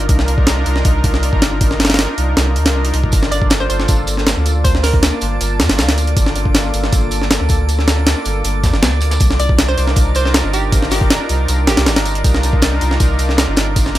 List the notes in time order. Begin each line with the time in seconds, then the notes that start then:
0.09 C2 D4 D#4 F4 A#4, kick, open hi-hat
0.19 snare
0.28 open hi-hat
0.38 kick
0.47 snare, open hi-hat
0.66 C2, open hi-hat
0.76 snare
0.85 C2, kick, open hi-hat
1.04 kick, open hi-hat
1.14 snare
1.23 open hi-hat
1.33 G1, kick
1.42 snare, open hi-hat
1.60 D4 D#4 F4 A#4, kick, open hi-hat
1.71 snare
1.80 snare, open hi-hat
1.85 snare, open hi-hat
1.90 snare, open hi-hat
1.94 snare, open hi-hat
1.99 snare, open hi-hat
2.18 C2, open hi-hat
2.37 C2, snare, open hi-hat
2.56 D#2, open hi-hat
2.66 C2, snare, open hi-hat
2.85 open hi-hat
2.94 C2, open hi-hat
3.04 kick
3.12 G1 A#3 D4 F4 A4 D5 D6, kick, open hi-hat, tambourine
3.22 snare, closed hi-hat
3.31 D5, open hi-hat, tambourine
3.42 kick
3.50 snare, open hi-hat, tambourine
3.60 C5, closed hi-hat
3.70 G1 C5, open hi-hat, tambourine
3.79 snare
3.88 G1, kick, open hi-hat, tambourine
4.07 open hi-hat, tambourine
4.17 snare
4.27 snare, open hi-hat, tambourine
4.37 D2
4.46 open hi-hat, tambourine
4.64 A#3 D4 F4 C5 A5, kick, open hi-hat, tambourine
4.75 snare
4.83 A#4, snare, open hi-hat, tambourine
4.94 kick, closed hi-hat
5.03 snare, open hi-hat, tambourine
5.21 G1, open hi-hat, tambourine
5.41 G1, open hi-hat, tambourine
5.60 G2, snare, open hi-hat, tambourine
5.69 G1, snare, open hi-hat
5.78 D2, snare, open hi-hat, tambourine
5.89 snare, open hi-hat
5.98 open hi-hat, tambourine
6.07 closed hi-hat
6.17 G1 A#3 D4 F4 A4, kick, open hi-hat, tambourine
6.26 snare, closed hi-hat
6.36 open hi-hat, tambourine
6.46 kick
6.54 snare, open hi-hat, tambourine
6.66 closed hi-hat
6.74 G1, open hi-hat, tambourine
6.83 snare
6.92 G1, kick, open hi-hat, tambourine
7.11 open hi-hat, tambourine
7.22 snare
7.30 snare, open hi-hat, tambourine
7.40 D2
7.49 kick, open hi-hat, tambourine
7.69 A#3 D4 F4 A4, open hi-hat, tambourine
7.79 snare
7.88 snare, open hi-hat, tambourine
7.97 closed hi-hat
8.07 snare, open hi-hat, tambourine
8.25 G1, open hi-hat, tambourine
8.44 G1, open hi-hat, tambourine
8.64 G2, kick, snare, open hi-hat, tambourine
8.73 G1, snare, closed hi-hat
8.82 D2, snare, open hi-hat, tambourine
8.93 closed hi-hat
9.01 open hi-hat, tambourine
9.11 snare, closed hi-hat, tambourine
9.20 C2 D4 D#4 F4 A#4, kick, open hi-hat, tambourine
9.30 snare, closed hi-hat
9.40 D5, open hi-hat, tambourine
9.49 kick
9.58 snare, open hi-hat, tambourine
9.68 C5, closed hi-hat
9.77 C2 C5, open hi-hat, tambourine
9.87 snare
9.96 C2, kick, open hi-hat, tambourine
10.15 C5, open hi-hat, tambourine
10.25 C5, snare
10.34 snare, open hi-hat, tambourine
10.44 G1
10.53 G4, open hi-hat, tambourine
10.72 D4 D#4 F4 A#4, kick, open hi-hat, tambourine
10.82 snare
10.91 G4, snare, open hi-hat, tambourine
11.01 kick, closed hi-hat
11.10 snare, open hi-hat, tambourine
11.29 C2, open hi-hat, tambourine
11.48 C2, open hi-hat, tambourine
11.67 G1 G4, snare, open hi-hat, tambourine
11.77 C2, snare, open hi-hat
11.86 G1, snare, open hi-hat, tambourine
11.96 snare, open hi-hat
12.06 open hi-hat, tambourine
12.15 closed hi-hat
12.24 C2 D4 D#4 F4 A#4, kick, open hi-hat, tambourine
12.34 snare, closed hi-hat
12.43 open hi-hat, tambourine
12.53 kick
12.62 snare, open hi-hat, tambourine
12.72 closed hi-hat
12.81 C2, open hi-hat, tambourine
12.91 snare
13.00 C2, kick, open hi-hat, tambourine
13.19 open hi-hat, tambourine
13.29 snare
13.37 snare, open hi-hat, tambourine
13.48 G1
13.56 snare, open hi-hat, tambourine
13.76 D4 D#4 F4 A#4, kick, open hi-hat, tambourine
13.86 snare
13.95 snare, open hi-hat, tambourine